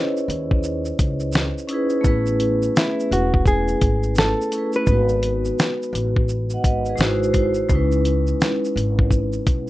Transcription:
Already playing: vibraphone C#4 D#4 E4 G#4 B4 C5 C#5 D#5, hollow-body jazz guitar E4
0.17 shaker
0.28 upright bass D#2, closed hi-hat, shaker
0.51 kick
0.63 shaker
0.85 shaker
0.99 upright bass C#2, kick, closed hi-hat, shaker
1.20 shaker
1.32 finger snap, snare, shaker
1.58 shaker
1.68 vibraphone C#4 D#4 E4, closed hi-hat, shaker
1.73 vibraphone G#4 B4
1.90 shaker
2.01 upright bass A1, vibraphone A3 B3 E4, kick, shaker
2.06 vibraphone C#4 G#4 B4
2.26 shaker
2.40 closed hi-hat, shaker
2.62 shaker
2.76 hollow-body jazz guitar E4, finger snap, snare, shaker
3.00 shaker
3.11 upright bass E1, hollow-body jazz guitar F#4, closed hi-hat, shaker
3.34 kick
3.46 hollow-body jazz guitar G#4, kick, shaker
3.68 shaker
3.81 upright bass G#1, kick, closed hi-hat, shaker
4.03 shaker
4.15 hollow-body jazz guitar A4, finger snap, snare, shaker
4.41 shaker
4.52 vibraphone A3 C#4 E4, closed hi-hat, shaker
4.56 vibraphone G#4 B4
4.73 hollow-body jazz guitar B4, shaker
4.85 upright bass G#1, vibraphone G#3 B3 D#4, kick, shaker
4.91 vibraphone F#4 B4
5.09 shaker
5.23 closed hi-hat, shaker
5.45 shaker
5.59 finger snap, snare, shaker
5.82 shaker
5.93 upright bass A1, closed hi-hat, shaker
6.16 kick
6.29 shaker
6.50 shaker
6.54 vibraphone D#5 F#5
6.64 upright bass G#1, vibraphone B4 D#5, kick, closed hi-hat, shaker
6.85 vibraphone B4, shaker
6.90 vibraphone G#4
6.96 upright bass G#1, vibraphone G#3 D#4 E4, shaker
7.00 vibraphone F#4 C5, finger snap, snare
7.23 shaker
7.33 vibraphone G#3 D#4 E4, kick, closed hi-hat, shaker
7.38 vibraphone F#4 C5
7.54 shaker
7.69 upright bass C#2, vibraphone G#3 C#4 D#4, kick, shaker
7.73 vibraphone E4 B4
7.92 shaker
8.05 closed hi-hat, shaker
8.27 shaker
8.41 finger snap, snare, shaker
8.65 shaker
8.76 upright bass G#1, closed hi-hat, shaker
8.99 kick
9.11 kick, shaker
9.33 shaker
9.47 upright bass B1, kick, closed hi-hat, shaker

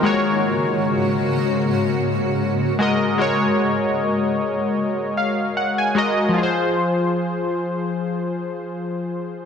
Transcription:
Already playing: ambient pad A#3
0.03 ambient pad G#2 C#3 F#4, synth keys G#3 F#4 A#4 C#5
2.79 synth keys G#3 F#4 A#4 D#5
3.18 synth keys G#3 F#4 A#4 C#5
5.17 synth keys F5
5.57 synth keys F#5
5.78 synth keys G#5
5.95 synth keys G#3 F#4 A#4 D#5
6.29 synth keys F3
6.34 synth keys F4
6.38 synth keys G#4
6.43 synth keys C5

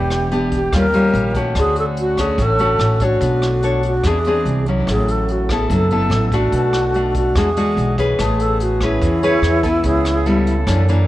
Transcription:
Already playing: upright bass E1, nylon-string guitar E3 B3 D4 G4, brass ensemble E3 D4 G4, alto flute G4
0.11 cross-stick, closed hi-hat
0.31 nylon-string guitar B3 D4 G4, closed hi-hat
0.52 kick, closed hi-hat
0.56 alto flute G4
0.73 upright bass D#2, nylon-string guitar D#3 G3 C#4 F4, brass ensemble F3 C#4, kick, cross-stick, closed hi-hat
0.78 alto flute A#4
0.94 nylon-string guitar G3 C#4 F4, closed hi-hat
1.13 upright bass A#1, closed hi-hat
1.35 nylon-string guitar A3 C#4 F#4, kick, closed hi-hat
1.55 upright bass D2, brass ensemble D3 F#4, nylon-string guitar D3, alto flute G#4, kick, cross-stick, closed hi-hat
1.76 alto flute A4, closed hi-hat
1.97 alto flute F#4, closed hi-hat
2.17 nylon-string guitar A3 C#4 F#4, alto flute G#4, kick, cross-stick, closed hi-hat
2.38 upright bass A1, nylon-string guitar A2, kick, closed hi-hat
2.42 alto flute A4
2.59 nylon-string guitar A3 C#4 F#4, closed hi-hat
2.79 upright bass A1, cross-stick, closed hi-hat
3.00 nylon-string guitar D4 A4 C#5, kick, closed hi-hat
3.04 alto flute F#4
3.21 upright bass B1, brass ensemble D3 A3 D4, nylon-string guitar B3, kick, closed hi-hat
3.42 cross-stick, closed hi-hat
3.62 nylon-string guitar D4 A4 C#5, closed hi-hat
3.83 alto flute F#4, closed hi-hat
4.04 upright bass E2, brass ensemble C3 G#3, nylon-string guitar E3 C4 D4 G#4, kick, cross-stick, closed hi-hat
4.08 alto flute G#4
4.24 nylon-string guitar C4 D4 G#4, closed hi-hat
4.45 upright bass C2, closed hi-hat
4.66 nylon-string guitar F#3 C#4 E4, closed hi-hat
4.86 upright bass A1, nylon-string guitar A2, brass ensemble C#3 F#4 A4, kick, cross-stick, closed hi-hat
4.91 alto flute G#4
5.08 alto flute A4, closed hi-hat
5.28 alto flute F#4, closed hi-hat
5.49 nylon-string guitar B3 E4 A4, alto flute G#4, kick, cross-stick, closed hi-hat
5.69 upright bass F#1, brass ensemble G#2 B2 E4, nylon-string guitar F#3, alto flute A4, kick, closed hi-hat
5.90 nylon-string guitar B3 E4 A4, closed hi-hat
6.10 upright bass A1, cross-stick, closed hi-hat
6.32 nylon-string guitar A3 D4 F#4, alto flute F#4, kick, closed hi-hat
6.52 upright bass B1, nylon-string guitar B2, brass ensemble D4, kick, closed hi-hat
6.73 cross-stick, closed hi-hat
6.94 nylon-string guitar A3 D4 F#4, closed hi-hat
7.15 alto flute F#4, kick, closed hi-hat
7.35 upright bass E2, brass ensemble D3 G#3 F#4, nylon-string guitar E3 G#3 D4 F#4, alto flute G#4, kick, cross-stick, closed hi-hat
7.57 nylon-string guitar G#3 D4 F#4, closed hi-hat
7.77 upright bass B1, closed hi-hat
7.98 nylon-string guitar C#4 G#4 B4, kick, closed hi-hat
8.18 upright bass A1, brass ensemble C#3 B3 G#4, nylon-string guitar A3, alto flute G#4, kick, cross-stick, closed hi-hat
8.39 alto flute A4, closed hi-hat
8.60 alto flute F#4, closed hi-hat
8.81 nylon-string guitar C#4 G#4 B4, alto flute E4, kick, cross-stick, closed hi-hat
9.02 upright bass E2, nylon-string guitar E3, kick, closed hi-hat
9.21 nylon-string guitar C#4 G#4 B4, flute C#5, closed hi-hat
9.42 upright bass E2, cross-stick, closed hi-hat
9.63 nylon-string guitar B3 E4, flute A4, kick, closed hi-hat
9.83 upright bass C#2, nylon-string guitar C#3, brass ensemble E4, flute G#4, kick, closed hi-hat
10.05 cross-stick, closed hi-hat
10.14 flute G#4
10.26 nylon-string guitar G3 B3 E4, flute A4, closed hi-hat
10.47 closed hi-hat
10.67 upright bass F#2, nylon-string guitar F#2 E3 A#3 D4, brass ensemble D3 A#3, kick, cross-stick, closed hi-hat
10.88 nylon-string guitar E3 A#3 D4, closed hi-hat

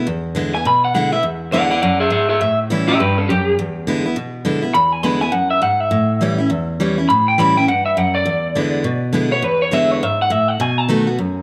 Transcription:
0.07 steel-string acoustic guitar E2
0.35 steel-string acoustic guitar D3 G#3 B3 E4
0.55 steel-string acoustic guitar B3 E4, clean electric guitar G#5
0.65 steel-string acoustic guitar B2, clean electric guitar B5
0.85 clean electric guitar F#5
0.94 steel-string acoustic guitar D3 G#3 B3 E4, clean electric guitar F#5
1.12 steel-string acoustic guitar B3 E4, clean electric guitar E5
1.23 steel-string acoustic guitar E2
1.52 steel-string acoustic guitar D3 G#3 B3 E4, clean electric guitar D5 F#5
1.70 steel-string acoustic guitar B3 E4, clean electric guitar D5 F#5
1.82 steel-string acoustic guitar F#2, clean electric guitar D5 F#5
2.00 clean electric guitar G#4 E5
2.10 steel-string acoustic guitar G#2, clean electric guitar G#4 E5
2.29 clean electric guitar G#4 E5
2.41 steel-string acoustic guitar A2, clean electric guitar E5
2.70 steel-string acoustic guitar E3 G3 C#4 E4
2.88 steel-string acoustic guitar C#4 E4, clean electric guitar G4 E5
3.00 steel-string acoustic guitar G2, clean electric guitar G4 B4
3.18 clean electric guitar C#4 A4
3.29 steel-string acoustic guitar F#2, clean electric guitar G4
3.59 steel-string acoustic guitar E2
3.87 steel-string acoustic guitar D3 G#3 B3 E4
4.06 steel-string acoustic guitar B3 E4
4.16 steel-string acoustic guitar B2
4.45 steel-string acoustic guitar D3 G#3 B3 E4
4.62 steel-string acoustic guitar B3 E4
4.74 steel-string acoustic guitar E2, clean electric guitar B5
4.92 clean electric guitar G#5
5.03 steel-string acoustic guitar D3 G#3 B3 E4, clean electric guitar B5
5.21 steel-string acoustic guitar B3 E4, clean electric guitar G#5
5.32 steel-string acoustic guitar F#2, clean electric guitar F#5
5.51 clean electric guitar E5
5.62 steel-string acoustic guitar G#2, clean electric guitar F#5
5.80 clean electric guitar E5
5.91 steel-string acoustic guitar A2
6.21 steel-string acoustic guitar E3 G3 C#4 E4
6.38 steel-string acoustic guitar C#4 E4
6.50 steel-string acoustic guitar E2
6.80 steel-string acoustic guitar E3 G3 C#4 E4
6.98 steel-string acoustic guitar C#4 E4
7.09 steel-string acoustic guitar A2, clean electric guitar B5
7.28 clean electric guitar G5
7.38 steel-string acoustic guitar E3 G3 C#4 E4, clean electric guitar B5
7.57 steel-string acoustic guitar C#4 E4, clean electric guitar G5
7.68 steel-string acoustic guitar G2, clean electric guitar F#5
7.86 clean electric guitar E5
7.97 steel-string acoustic guitar F#2, clean electric guitar F#5
8.15 clean electric guitar D5
8.26 steel-string acoustic guitar E2
8.55 steel-string acoustic guitar D3 G#3 B3 E4
8.84 steel-string acoustic guitar B2
9.13 steel-string acoustic guitar D3 G#3 B3 E4
9.31 steel-string acoustic guitar B3 E4, clean electric guitar C#5
9.42 steel-string acoustic guitar E2, clean electric guitar B4
9.62 clean electric guitar C#5
9.71 steel-string acoustic guitar D3 G#3 B3 E4, clean electric guitar E5
9.91 clean electric guitar C#5
10.03 steel-string acoustic guitar G#2, clean electric guitar E5
10.22 clean electric guitar F#5
10.30 steel-string acoustic guitar A2, clean electric guitar E5
10.48 clean electric guitar F#5
10.60 steel-string acoustic guitar B2, clean electric guitar G#5
10.78 clean electric guitar A5
10.88 steel-string acoustic guitar D#3 A3 B3 F#4
11.07 steel-string acoustic guitar B3 F#4
11.18 steel-string acoustic guitar F#2

